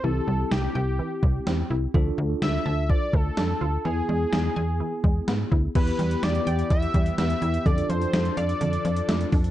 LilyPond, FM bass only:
\new Staff \with { instrumentName = "FM bass" } { \clef bass \time 4/4 \key e \phrygian \tempo 4 = 126 c,8 c,8 c,8 c,8. r16 c,8 e,8 c,8 | d,8 d,8 d,8 d,8. r16 d,8 f,8 d,8 | e,8 e,8 e,8 e,8. r16 e,8 gis,8 d,8 | e,8 e,8 e,8 e,8 e,8 e,8 e,8 e,8 |
f,8 f,8 f,8 f,8 f,8 f,8 f,8 f,8 | }